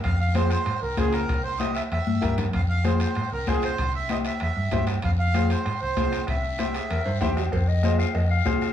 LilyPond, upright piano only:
\new Staff \with { instrumentName = "Upright piano" } { \time 4/4 \key f \minor \tempo 4 = 192 r4 <f' aes' c''>8 r4. <f' aes' c''>8 r8 | r4 <e' g' c''>8 r4. <e' g' bes'>8 r8 | r4 <f' aes' c''>8 r4. <f' aes' c''>8 r8 | r4 <e' g' c''>8 r4. <e' g' c''>8 r8 |
r4 <f' aes' c''>8 r4. <f' aes' c''>8 r8 | r4 <e' g' c''>8 r4. <e' g' c''>8 r8 | r4 <f' aes' c''>8 r4. <f' aes' c''>8 r8 | }